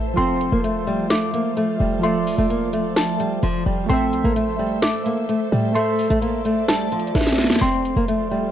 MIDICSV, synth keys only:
0, 0, Header, 1, 2, 480
1, 0, Start_track
1, 0, Tempo, 465116
1, 180, Time_signature, 4, 2, 24, 8
1, 8787, End_track
2, 0, Start_track
2, 0, Title_t, "Synth keys"
2, 0, Program_c, 0, 88
2, 0, Control_c, 0, 64, 127
2, 0, Note_on_c, 0, 57, 72
2, 0, Note_on_c, 0, 69, 65
2, 0, Note_on_c, 0, 72, 64
2, 0, Note_on_c, 0, 76, 75
2, 123, Note_off_c, 0, 57, 0
2, 135, Note_off_c, 0, 69, 0
2, 140, Note_on_c, 0, 53, 68
2, 148, Note_off_c, 0, 72, 0
2, 160, Note_off_c, 0, 76, 0
2, 164, Note_on_c, 0, 65, 63
2, 188, Note_on_c, 0, 69, 66
2, 195, Control_c, 0, 64, 0
2, 213, Note_on_c, 0, 72, 80
2, 401, Control_c, 0, 64, 127
2, 2041, Note_off_c, 0, 53, 0
2, 2053, Note_off_c, 0, 65, 0
2, 2056, Note_on_c, 0, 53, 71
2, 2065, Note_off_c, 0, 69, 0
2, 2078, Note_off_c, 0, 72, 0
2, 2081, Note_on_c, 0, 65, 61
2, 2105, Note_on_c, 0, 69, 65
2, 2129, Note_on_c, 0, 74, 78
2, 3959, Note_off_c, 0, 53, 0
2, 3971, Note_off_c, 0, 65, 0
2, 3984, Note_off_c, 0, 69, 0
2, 3986, Note_on_c, 0, 57, 69
2, 3996, Note_off_c, 0, 74, 0
2, 4011, Note_on_c, 0, 69, 69
2, 4032, Control_c, 0, 64, 0
2, 4035, Note_on_c, 0, 72, 67
2, 4059, Note_on_c, 0, 76, 78
2, 4191, Control_c, 0, 64, 127
2, 5884, Note_off_c, 0, 57, 0
2, 5896, Note_off_c, 0, 69, 0
2, 5903, Note_on_c, 0, 57, 73
2, 5909, Note_off_c, 0, 72, 0
2, 5921, Note_off_c, 0, 76, 0
2, 5928, Note_on_c, 0, 69, 61
2, 5952, Note_on_c, 0, 72, 66
2, 5976, Note_on_c, 0, 76, 76
2, 7802, Note_off_c, 0, 57, 0
2, 7815, Note_off_c, 0, 69, 0
2, 7827, Note_off_c, 0, 72, 0
2, 7840, Note_off_c, 0, 76, 0
2, 7873, Control_c, 0, 64, 0
2, 8787, End_track
0, 0, End_of_file